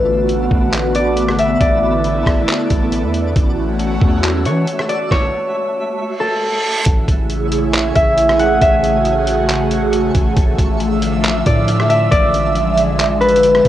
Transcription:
0.00 0.49 A1 loud
0.00 3.32 D3 medium
0.00 3.32 A3 medium
0.00 3.32 B3 medium
0.00 1.59 F#4 medium
0.00 3.32 A4 medium
0.00 1.24 B4 medium
0.00 3.32 D5 medium
0.29 closed hi-hat medium
0.51 1.57 A1 loud
0.51 kick loud
0.73 clap loud
0.73 closed hi-hat medium
0.95 1.60 D5 medium
0.95 closed hi-hat medium
1.17 closed hi-hat medium
1.29 cross-stick medium
1.39 3.11 E5 medium
1.39 closed hi-hat medium
1.61 2.24 A1 loud
1.61 3.34 E4 medium
1.61 3.45 D5 medium
1.61 kick loud
1.61 closed hi-hat medium
2.04 closed hi-hat medium
2.26 2.47 A1 loud
2.26 kick loud
2.26 cross-stick loud
2.48 clap loud
2.48 closed hi-hat medium
2.70 3.04 A1 loud
2.70 kick medium
2.70 closed hi-hat medium
2.92 closed hi-hat medium
3.03 3.34 E2 loud
3.14 closed hi-hat medium
3.36 3.99 A1 loud
3.36 5.09 E3 medium
3.36 5.09 A3 medium
3.36 6.83 A3 medium
3.36 5.09 C#4 medium
3.36 5.09 F#4 medium
3.36 6.83 F#4 medium
3.36 6.83 E5 medium
3.36 kick loud
3.36 closed hi-hat medium
3.79 closed hi-hat medium
4.01 4.47 E2 loud
4.01 kick loud
4.24 clap loud
4.24 closed hi-hat medium
4.45 4.66 E3 medium
4.45 4.95 C#5 medium
4.45 closed hi-hat medium
4.67 closed hi-hat medium
4.79 cross-stick medium
4.89 5.17 D5 medium
4.89 closed hi-hat medium
5.11 7.03 C#5 loud
5.11 kick loud
5.11 snare medium
5.99 reverse cymbal medium
6.20 8.39 A4 medium
6.86 7.07 A1 loud
6.86 10.33 C#3 medium
6.86 12.08 A3 medium
6.86 10.33 A3 medium
6.86 8.60 E4 medium
6.86 10.33 G#4 medium
6.86 10.33 C#5 medium
6.86 kick loud
6.86 closed hi-hat medium
7.08 7.92 A1 loud
7.08 kick medium
7.08 closed hi-hat medium
7.30 closed hi-hat medium
7.52 closed hi-hat medium
7.74 clap loud
7.74 closed hi-hat medium
7.95 8.59 A1 loud
7.95 8.61 E5 medium
7.95 kick medium
7.95 closed hi-hat medium
8.18 closed hi-hat medium
8.29 cross-stick medium
8.39 10.00 F#5 medium
8.39 closed hi-hat medium
8.61 10.11 A1 loud
8.61 10.35 F#4 loud
8.61 10.34 E5 loud
8.61 kick loud
8.61 closed hi-hat medium
8.84 closed hi-hat medium
9.05 closed hi-hat medium
9.27 closed hi-hat medium
9.49 clap loud
9.49 closed hi-hat medium
9.71 closed hi-hat medium
9.93 closed hi-hat medium
10.15 10.36 A1 loud
10.15 kick loud
10.15 closed hi-hat medium
10.36 10.58 A1 loud
10.36 13.68 D3 medium
10.36 13.68 F3 medium
10.36 13.68 D4 medium
10.36 13.68 F4 medium
10.36 13.68 E5 medium
10.36 kick loud
10.36 closed hi-hat medium
10.59 11.43 A1 loud
10.59 kick medium
10.59 closed hi-hat medium
10.80 closed hi-hat medium
11.02 closed hi-hat medium
11.24 clap loud
11.24 closed hi-hat medium
11.46 12.09 A2 loud
11.46 12.11 D5 medium
11.46 kick medium
11.46 closed hi-hat medium
11.68 closed hi-hat medium
11.80 cross-stick medium
11.89 13.62 E5 medium
11.89 closed hi-hat medium
12.11 13.61 A1 loud
12.11 13.68 G#3 medium
12.11 13.68 D5 loud
12.11 kick loud
12.11 closed hi-hat medium
12.34 closed hi-hat medium
12.55 closed hi-hat medium
12.77 closed hi-hat medium
12.99 clap loud
12.99 closed hi-hat medium
13.21 13.68 B4 medium
13.21 closed hi-hat soft
13.29 closed hi-hat medium
13.36 closed hi-hat medium
13.43 closed hi-hat medium
13.55 cross-stick medium
13.65 13.68 A1 loud
13.65 kick loud
13.65 closed hi-hat medium

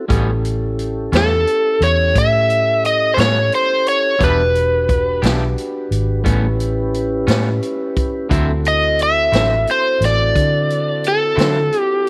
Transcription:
0.08 1.09 A1 medium
0.08 0.30 A2 medium
0.08 0.30 G3 medium
0.08 0.30 B3 medium
0.08 4.16 C#4 medium
0.08 0.30 C#4 medium
0.08 4.16 E4 medium
0.08 4.17 G4 medium
0.08 4.17 A4 medium
0.08 kick medium
0.08 closed hi-hat medium
0.45 closed hi-hat soft
0.79 closed hi-hat soft
1.12 1.44 E2 medium
1.12 1.33 A2 soft
1.12 1.34 G3 soft
1.12 1.33 B3 medium
1.12 1.33 C#4 medium
1.12 snare medium
1.12 closed hi-hat medium
1.17 1.85 A4 medium
1.47 closed hi-hat soft
1.81 2.12 E2 medium
1.81 2.17 C#5 medium
1.81 closed hi-hat medium
2.15 3.14 A2 medium
2.15 2.86 E5 medium
2.15 kick medium
2.15 closed hi-hat medium
2.50 closed hi-hat medium
2.85 3.13 D#5 medium
2.85 closed hi-hat soft
3.14 3.49 A2 medium
3.14 3.39 A2 soft
3.14 3.38 G3 medium
3.14 3.38 B3 medium
3.14 3.38 C#4 medium
3.14 3.19 C5 medium
3.14 closed hi-hat medium
3.20 3.54 C#5 medium
3.20 snare medium
3.52 3.88 C5 medium
3.52 closed hi-hat medium
3.86 4.23 C#5 medium
3.86 closed hi-hat medium
4.19 5.19 E1 medium
4.19 4.40 E3 medium
4.19 4.40 B3 medium
4.19 6.23 D4 medium
4.19 4.41 D4 medium
4.19 6.23 F#4 medium
4.19 6.23 G4 medium
4.19 4.41 G4 medium
4.19 6.23 B4 medium
4.19 kick medium
4.19 closed hi-hat medium
4.24 5.21 B4 medium
4.55 closed hi-hat soft
4.89 kick medium
4.89 closed hi-hat soft
5.22 5.54 B1 medium
5.22 5.44 E3 medium
5.22 5.44 B3 medium
5.22 5.43 D4 medium
5.22 5.43 G4 medium
5.22 snare medium
5.22 closed hi-hat medium
5.58 closed hi-hat soft
5.91 6.23 G#1 medium
5.91 closed hi-hat medium
6.24 7.24 A1 medium
6.24 6.45 A2 medium
6.24 6.45 G3 medium
6.24 6.46 B3 medium
6.24 6.46 C#4 medium
6.24 8.28 C#4 medium
6.24 8.29 E4 medium
6.24 8.28 G4 medium
6.24 8.28 B4 medium
6.24 kick medium
6.24 closed hi-hat medium
6.60 closed hi-hat soft
6.94 closed hi-hat soft
7.27 7.59 A2 medium
7.27 7.49 A2 medium
7.27 7.49 G3 medium
7.27 7.48 B3 medium
7.27 7.48 C#4 medium
7.27 snare medium
7.27 closed hi-hat medium
7.62 closed hi-hat soft
7.96 kick medium
7.96 closed hi-hat soft
8.29 9.29 D2 medium
8.29 8.50 D3 medium
8.29 8.51 F#3 medium
8.29 12.10 C4 medium
8.29 8.51 C4 medium
8.29 12.10 E4 medium
8.29 8.51 E4 medium
8.29 12.10 F#4 medium
8.29 12.10 A4 medium
8.29 kick medium
8.29 closed hi-hat medium
8.65 9.01 D#5 medium
8.65 closed hi-hat medium
8.99 9.71 E5 medium
8.99 closed hi-hat medium
9.32 9.64 A1 medium
9.32 9.54 D3 soft
9.32 9.54 F#3 medium
9.32 9.53 C4 soft
9.32 9.53 E4 medium
9.32 snare medium
9.32 closed hi-hat medium
9.67 10.04 C5 medium
9.67 closed hi-hat medium
10.01 10.32 A1 medium
10.01 snare soft
10.01 closed hi-hat medium
10.05 11.09 D5 medium
10.35 11.34 D3 medium
10.35 kick medium
10.35 closed hi-hat medium
10.70 closed hi-hat soft
11.04 closed hi-hat soft
11.08 11.80 A4 medium
11.36 11.69 D3 medium
11.36 11.58 D3 soft
11.36 11.58 F#3 medium
11.36 11.58 C4 medium
11.36 11.57 E4 medium
11.36 closed hi-hat medium
11.40 snare medium
11.72 closed hi-hat medium
11.80 12.10 G4 medium

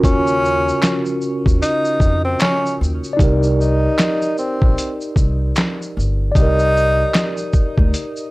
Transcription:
0.00 2.74 C#4 medium
0.00 2.75 F4 medium
0.00 2.77 F#4 medium
0.00 2.79 A#4 medium
0.00 kick loud
0.04 0.70 D#2 loud
0.04 1.02 C#4 loud
0.04 closed hi-hat medium
0.04 shaker medium
0.27 shaker soft
0.45 shaker soft
0.68 shaker soft
0.82 finger snap medium
0.82 snare loud
0.82 clap medium
0.82 closed hi-hat medium
0.82 shaker medium
1.06 shaker soft
1.21 shaker soft
1.46 1.60 D#2 medium
1.46 kick loud
1.46 shaker medium
1.62 2.21 D#4 medium
1.62 closed hi-hat medium
1.62 shaker medium
1.85 shaker soft
2.00 2.34 F2 medium
2.00 kick medium
2.00 shaker medium
2.25 2.43 C4 medium
2.40 2.76 C#4 medium
2.40 finger snap medium
2.40 snare loud
2.40 clap medium
2.40 closed hi-hat medium
2.40 shaker medium
2.66 shaker soft
2.81 3.00 D#2 medium
2.81 shaker soft
3.04 shaker soft
3.13 6.30 D#4 medium
3.13 6.28 D5 medium
3.19 3.86 C2 loud
3.19 6.32 G4 medium
3.19 kick loud
3.19 closed hi-hat medium
3.19 shaker medium
3.23 6.33 A#4 medium
3.43 shaker soft
3.60 4.34 D#4 medium
3.60 shaker soft
3.98 finger snap medium
3.98 snare loud
3.98 clap medium
3.98 closed hi-hat medium
3.98 shaker medium
4.22 shaker soft
4.38 4.97 C4 medium
4.38 shaker soft
4.62 4.75 A#1 medium
4.62 kick loud
4.78 closed hi-hat medium
4.78 shaker medium
5.01 shaker soft
5.16 5.50 C2 medium
5.16 kick medium
5.16 shaker medium
5.56 finger snap medium
5.56 snare loud
5.56 clap medium
5.56 closed hi-hat medium
5.56 shaker medium
5.82 shaker soft
5.97 6.29 G1 medium
5.97 shaker soft
6.32 8.31 D#4 medium
6.32 8.31 D5 medium
6.32 kick loud
6.36 7.02 C2 loud
6.36 7.34 D#4 loud
6.36 8.31 G4 medium
6.36 closed hi-hat medium
6.36 shaker medium
6.42 8.31 A#4 medium
6.59 shaker soft
6.77 shaker soft
7.14 finger snap medium
7.14 snare loud
7.14 clap medium
7.14 closed hi-hat medium
7.14 shaker medium
7.37 shaker soft
7.53 kick loud
7.53 shaker soft
7.78 7.91 D2 medium
7.78 kick loud
7.94 closed hi-hat medium
7.94 shaker medium
8.16 shaker soft

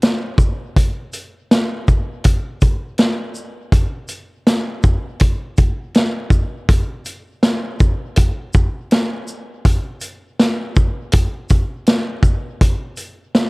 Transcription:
0.02 snare loud
0.02 closed hi-hat medium
0.38 kick medium
0.38 shaker medium
0.76 kick loud
0.76 closed hi-hat medium
1.13 closed hi-hat soft
1.13 shaker soft
1.51 snare loud
1.51 closed hi-hat medium
1.88 kick medium
1.88 shaker medium
2.24 kick loud
2.24 closed hi-hat medium
2.61 kick medium
2.61 closed hi-hat soft
2.61 shaker medium
2.98 snare medium
2.98 closed hi-hat medium
3.35 shaker soft
3.72 kick loud
3.72 closed hi-hat medium
4.08 closed hi-hat soft
4.08 shaker soft
4.47 snare loud
4.47 closed hi-hat medium
4.83 kick medium
4.83 shaker soft
5.20 kick medium
5.20 closed hi-hat medium
5.58 kick medium
5.58 closed hi-hat soft
5.58 shaker medium
5.94 snare medium
5.94 closed hi-hat medium
6.30 kick medium
6.30 shaker medium
6.69 kick loud
6.69 closed hi-hat medium
7.06 closed hi-hat soft
7.06 shaker medium
7.43 snare loud
7.43 closed hi-hat medium
7.80 kick loud
7.80 shaker medium
8.16 kick loud
8.16 closed hi-hat medium
8.54 kick loud
8.54 shaker medium
8.91 snare loud
8.91 closed hi-hat medium
9.28 shaker medium
9.65 kick loud
9.65 closed hi-hat medium
10.01 closed hi-hat medium
10.01 shaker medium
10.39 snare loud
10.39 closed hi-hat medium
10.76 kick loud
10.76 shaker medium
11.12 kick loud
11.12 closed hi-hat medium
11.50 kick medium
11.50 closed hi-hat soft
11.50 shaker medium
11.86 snare loud
11.86 closed hi-hat medium
12.23 kick medium
12.23 shaker medium
12.61 kick loud
12.61 closed hi-hat medium
12.97 closed hi-hat soft
12.97 shaker soft
13.35 snare loud
13.35 closed hi-hat medium

